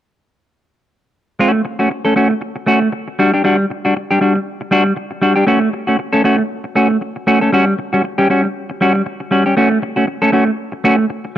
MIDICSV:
0, 0, Header, 1, 3, 480
1, 0, Start_track
1, 0, Tempo, 510638
1, 1316, Time_signature, 4, 2, 24, 8
1, 10694, End_track
2, 0, Start_track
2, 0, Title_t, "Clean electric guitar"
2, 0, Program_c, 0, 27
2, 1311, Note_on_c, 0, 57, 72
2, 1318, Note_on_c, 0, 61, 78
2, 1321, Note_on_c, 0, 66, 86
2, 1434, Note_off_c, 0, 66, 0
2, 1440, Note_off_c, 0, 61, 0
2, 1508, Note_off_c, 0, 57, 0
2, 1684, Note_on_c, 0, 66, 59
2, 1690, Note_on_c, 0, 61, 57
2, 1694, Note_on_c, 0, 57, 49
2, 1779, Note_off_c, 0, 57, 0
2, 1787, Note_off_c, 0, 61, 0
2, 1791, Note_off_c, 0, 66, 0
2, 1923, Note_on_c, 0, 69, 71
2, 1930, Note_on_c, 0, 61, 64
2, 1934, Note_on_c, 0, 57, 55
2, 2018, Note_off_c, 0, 57, 0
2, 2023, Note_off_c, 0, 61, 0
2, 2029, Note_on_c, 0, 57, 56
2, 2034, Note_on_c, 0, 61, 64
2, 2036, Note_off_c, 0, 69, 0
2, 2040, Note_on_c, 0, 66, 65
2, 2152, Note_off_c, 0, 66, 0
2, 2159, Note_off_c, 0, 61, 0
2, 2188, Note_off_c, 0, 57, 0
2, 2505, Note_on_c, 0, 57, 71
2, 2511, Note_on_c, 0, 61, 75
2, 2518, Note_on_c, 0, 66, 83
2, 2635, Note_off_c, 0, 66, 0
2, 2642, Note_off_c, 0, 61, 0
2, 2702, Note_off_c, 0, 57, 0
2, 2998, Note_on_c, 0, 55, 71
2, 3002, Note_on_c, 0, 62, 73
2, 3004, Note_on_c, 0, 66, 71
2, 3129, Note_off_c, 0, 62, 0
2, 3132, Note_off_c, 0, 66, 0
2, 3133, Note_off_c, 0, 55, 0
2, 3135, Note_on_c, 0, 67, 53
2, 3140, Note_on_c, 0, 62, 54
2, 3144, Note_on_c, 0, 55, 45
2, 3224, Note_off_c, 0, 55, 0
2, 3228, Note_off_c, 0, 62, 0
2, 3235, Note_on_c, 0, 55, 74
2, 3240, Note_on_c, 0, 62, 73
2, 3243, Note_off_c, 0, 67, 0
2, 3247, Note_on_c, 0, 66, 80
2, 3361, Note_off_c, 0, 66, 0
2, 3367, Note_off_c, 0, 62, 0
2, 3427, Note_off_c, 0, 55, 0
2, 3618, Note_on_c, 0, 66, 62
2, 3624, Note_on_c, 0, 62, 61
2, 3626, Note_on_c, 0, 55, 52
2, 3716, Note_off_c, 0, 55, 0
2, 3718, Note_off_c, 0, 62, 0
2, 3719, Note_off_c, 0, 66, 0
2, 3860, Note_on_c, 0, 67, 71
2, 3867, Note_on_c, 0, 62, 64
2, 3871, Note_on_c, 0, 55, 59
2, 3945, Note_off_c, 0, 55, 0
2, 3951, Note_off_c, 0, 62, 0
2, 3957, Note_on_c, 0, 55, 59
2, 3962, Note_on_c, 0, 62, 60
2, 3965, Note_off_c, 0, 67, 0
2, 3969, Note_on_c, 0, 66, 59
2, 4083, Note_off_c, 0, 66, 0
2, 4090, Note_off_c, 0, 62, 0
2, 4113, Note_off_c, 0, 55, 0
2, 4429, Note_on_c, 0, 55, 79
2, 4435, Note_on_c, 0, 62, 90
2, 4440, Note_on_c, 0, 66, 90
2, 4555, Note_off_c, 0, 66, 0
2, 4561, Note_off_c, 0, 62, 0
2, 4624, Note_off_c, 0, 55, 0
2, 4903, Note_on_c, 0, 55, 65
2, 4909, Note_on_c, 0, 62, 63
2, 4912, Note_on_c, 0, 66, 77
2, 5031, Note_off_c, 0, 66, 0
2, 5032, Note_off_c, 0, 62, 0
2, 5035, Note_off_c, 0, 55, 0
2, 5035, Note_on_c, 0, 67, 61
2, 5043, Note_on_c, 0, 62, 57
2, 5047, Note_on_c, 0, 55, 53
2, 5136, Note_off_c, 0, 55, 0
2, 5139, Note_on_c, 0, 57, 69
2, 5140, Note_off_c, 0, 62, 0
2, 5144, Note_on_c, 0, 61, 77
2, 5148, Note_off_c, 0, 67, 0
2, 5152, Note_on_c, 0, 66, 74
2, 5266, Note_off_c, 0, 66, 0
2, 5273, Note_off_c, 0, 61, 0
2, 5339, Note_off_c, 0, 57, 0
2, 5520, Note_on_c, 0, 66, 59
2, 5529, Note_on_c, 0, 61, 54
2, 5532, Note_on_c, 0, 57, 52
2, 5618, Note_off_c, 0, 57, 0
2, 5621, Note_off_c, 0, 61, 0
2, 5626, Note_off_c, 0, 66, 0
2, 5758, Note_on_c, 0, 69, 75
2, 5762, Note_on_c, 0, 61, 75
2, 5771, Note_on_c, 0, 57, 69
2, 5856, Note_off_c, 0, 57, 0
2, 5862, Note_off_c, 0, 61, 0
2, 5868, Note_on_c, 0, 57, 67
2, 5872, Note_off_c, 0, 69, 0
2, 5873, Note_on_c, 0, 61, 69
2, 5875, Note_on_c, 0, 66, 71
2, 5991, Note_off_c, 0, 66, 0
2, 5998, Note_off_c, 0, 61, 0
2, 6028, Note_off_c, 0, 57, 0
2, 6349, Note_on_c, 0, 57, 68
2, 6353, Note_on_c, 0, 61, 83
2, 6358, Note_on_c, 0, 66, 79
2, 6474, Note_off_c, 0, 66, 0
2, 6483, Note_off_c, 0, 61, 0
2, 6544, Note_off_c, 0, 57, 0
2, 6833, Note_on_c, 0, 57, 69
2, 6837, Note_on_c, 0, 61, 78
2, 6839, Note_on_c, 0, 66, 80
2, 6962, Note_off_c, 0, 61, 0
2, 6965, Note_off_c, 0, 66, 0
2, 6968, Note_on_c, 0, 69, 63
2, 6969, Note_off_c, 0, 57, 0
2, 6974, Note_on_c, 0, 61, 54
2, 6980, Note_on_c, 0, 57, 54
2, 7069, Note_off_c, 0, 57, 0
2, 7070, Note_off_c, 0, 61, 0
2, 7073, Note_on_c, 0, 55, 73
2, 7081, Note_on_c, 0, 61, 75
2, 7082, Note_off_c, 0, 69, 0
2, 7086, Note_on_c, 0, 66, 88
2, 7200, Note_off_c, 0, 66, 0
2, 7208, Note_off_c, 0, 61, 0
2, 7266, Note_off_c, 0, 55, 0
2, 7452, Note_on_c, 0, 66, 61
2, 7460, Note_on_c, 0, 55, 55
2, 7460, Note_on_c, 0, 61, 53
2, 7545, Note_off_c, 0, 55, 0
2, 7551, Note_off_c, 0, 61, 0
2, 7556, Note_off_c, 0, 66, 0
2, 7690, Note_on_c, 0, 67, 75
2, 7693, Note_on_c, 0, 61, 71
2, 7698, Note_on_c, 0, 55, 66
2, 7789, Note_off_c, 0, 55, 0
2, 7794, Note_off_c, 0, 61, 0
2, 7800, Note_on_c, 0, 55, 56
2, 7805, Note_on_c, 0, 61, 61
2, 7806, Note_off_c, 0, 67, 0
2, 7809, Note_on_c, 0, 66, 62
2, 7921, Note_off_c, 0, 66, 0
2, 7932, Note_off_c, 0, 61, 0
2, 7954, Note_off_c, 0, 55, 0
2, 8281, Note_on_c, 0, 55, 69
2, 8286, Note_on_c, 0, 61, 74
2, 8291, Note_on_c, 0, 66, 88
2, 8402, Note_off_c, 0, 66, 0
2, 8407, Note_off_c, 0, 61, 0
2, 8469, Note_off_c, 0, 55, 0
2, 8752, Note_on_c, 0, 55, 67
2, 8757, Note_on_c, 0, 61, 59
2, 8760, Note_on_c, 0, 66, 65
2, 8884, Note_off_c, 0, 61, 0
2, 8887, Note_off_c, 0, 66, 0
2, 8888, Note_off_c, 0, 55, 0
2, 8891, Note_on_c, 0, 67, 51
2, 8895, Note_on_c, 0, 61, 50
2, 8900, Note_on_c, 0, 55, 44
2, 8988, Note_off_c, 0, 61, 0
2, 8990, Note_off_c, 0, 55, 0
2, 8994, Note_on_c, 0, 57, 79
2, 8998, Note_off_c, 0, 67, 0
2, 9000, Note_on_c, 0, 61, 78
2, 9002, Note_on_c, 0, 66, 75
2, 9116, Note_off_c, 0, 66, 0
2, 9123, Note_off_c, 0, 61, 0
2, 9185, Note_off_c, 0, 57, 0
2, 9364, Note_on_c, 0, 66, 59
2, 9371, Note_on_c, 0, 61, 63
2, 9373, Note_on_c, 0, 57, 52
2, 9459, Note_off_c, 0, 57, 0
2, 9463, Note_off_c, 0, 61, 0
2, 9464, Note_off_c, 0, 66, 0
2, 9605, Note_on_c, 0, 69, 79
2, 9610, Note_on_c, 0, 61, 72
2, 9614, Note_on_c, 0, 57, 53
2, 9693, Note_off_c, 0, 57, 0
2, 9699, Note_off_c, 0, 61, 0
2, 9704, Note_on_c, 0, 57, 67
2, 9711, Note_off_c, 0, 69, 0
2, 9711, Note_on_c, 0, 61, 70
2, 9715, Note_on_c, 0, 66, 73
2, 9825, Note_off_c, 0, 66, 0
2, 9833, Note_off_c, 0, 61, 0
2, 9865, Note_off_c, 0, 57, 0
2, 10190, Note_on_c, 0, 57, 72
2, 10196, Note_on_c, 0, 61, 84
2, 10198, Note_on_c, 0, 66, 89
2, 10312, Note_off_c, 0, 66, 0
2, 10317, Note_off_c, 0, 61, 0
2, 10384, Note_off_c, 0, 57, 0
2, 10694, End_track
3, 0, Start_track
3, 0, Title_t, "Muted clean electric guitar strokes"
3, 1445, Note_on_c, 9, 29, 32
3, 1539, Note_off_c, 9, 29, 0
3, 1548, Note_on_c, 9, 29, 43
3, 1642, Note_off_c, 9, 29, 0
3, 1790, Note_on_c, 9, 29, 36
3, 1884, Note_off_c, 9, 29, 0
3, 2163, Note_on_c, 9, 29, 45
3, 2257, Note_off_c, 9, 29, 0
3, 2268, Note_on_c, 9, 29, 41
3, 2362, Note_off_c, 9, 29, 0
3, 2403, Note_on_c, 9, 29, 47
3, 2497, Note_off_c, 9, 29, 0
3, 2647, Note_on_c, 9, 29, 37
3, 2741, Note_off_c, 9, 29, 0
3, 2748, Note_on_c, 9, 29, 42
3, 2842, Note_off_c, 9, 29, 0
3, 2892, Note_on_c, 9, 29, 33
3, 2986, Note_off_c, 9, 29, 0
3, 3372, Note_on_c, 9, 29, 30
3, 3466, Note_off_c, 9, 29, 0
3, 3482, Note_on_c, 9, 29, 35
3, 3576, Note_off_c, 9, 29, 0
3, 3727, Note_on_c, 9, 29, 42
3, 3821, Note_off_c, 9, 29, 0
3, 4094, Note_on_c, 9, 29, 42
3, 4188, Note_off_c, 9, 29, 0
3, 4333, Note_on_c, 9, 29, 49
3, 4427, Note_off_c, 9, 29, 0
3, 4566, Note_on_c, 9, 29, 43
3, 4660, Note_off_c, 9, 29, 0
3, 4666, Note_on_c, 9, 29, 39
3, 4760, Note_off_c, 9, 29, 0
3, 4801, Note_on_c, 9, 29, 37
3, 4895, Note_off_c, 9, 29, 0
3, 5277, Note_on_c, 9, 29, 37
3, 5371, Note_off_c, 9, 29, 0
3, 5390, Note_on_c, 9, 29, 34
3, 5484, Note_off_c, 9, 29, 0
3, 5629, Note_on_c, 9, 29, 40
3, 5723, Note_off_c, 9, 29, 0
3, 6002, Note_on_c, 9, 29, 47
3, 6096, Note_off_c, 9, 29, 0
3, 6243, Note_on_c, 9, 29, 39
3, 6337, Note_off_c, 9, 29, 0
3, 6486, Note_on_c, 9, 29, 40
3, 6580, Note_off_c, 9, 29, 0
3, 6592, Note_on_c, 9, 29, 35
3, 6686, Note_off_c, 9, 29, 0
3, 6731, Note_on_c, 9, 29, 39
3, 6825, Note_off_c, 9, 29, 0
3, 7211, Note_on_c, 9, 29, 35
3, 7305, Note_off_c, 9, 29, 0
3, 7319, Note_on_c, 9, 29, 33
3, 7413, Note_off_c, 9, 29, 0
3, 7557, Note_on_c, 9, 29, 37
3, 7651, Note_off_c, 9, 29, 0
3, 7932, Note_on_c, 9, 29, 45
3, 8026, Note_off_c, 9, 29, 0
3, 8174, Note_on_c, 9, 29, 47
3, 8268, Note_off_c, 9, 29, 0
3, 8413, Note_on_c, 9, 29, 50
3, 8507, Note_off_c, 9, 29, 0
3, 8518, Note_on_c, 9, 29, 39
3, 8612, Note_off_c, 9, 29, 0
3, 8651, Note_on_c, 9, 29, 42
3, 8745, Note_off_c, 9, 29, 0
3, 9128, Note_on_c, 9, 29, 34
3, 9222, Note_off_c, 9, 29, 0
3, 9235, Note_on_c, 9, 29, 43
3, 9329, Note_off_c, 9, 29, 0
3, 9470, Note_on_c, 9, 29, 38
3, 9564, Note_off_c, 9, 29, 0
3, 9836, Note_on_c, 9, 29, 43
3, 9930, Note_off_c, 9, 29, 0
3, 10079, Note_on_c, 9, 29, 46
3, 10173, Note_off_c, 9, 29, 0
3, 10323, Note_on_c, 9, 29, 43
3, 10417, Note_off_c, 9, 29, 0
3, 10433, Note_on_c, 9, 29, 38
3, 10527, Note_off_c, 9, 29, 0
3, 10572, Note_on_c, 9, 29, 44
3, 10666, Note_off_c, 9, 29, 0
3, 10694, End_track
0, 0, End_of_file